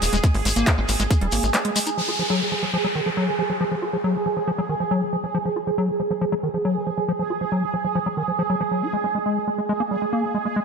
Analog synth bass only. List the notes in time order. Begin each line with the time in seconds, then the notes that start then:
0.02 D#1
0.13 D#1
0.34 G#1
0.45 G#1
0.56 G#1
0.78 G#1
0.89 G#1
1.00 G#1
1.21 D#1
1.32 G#1
1.43 G#1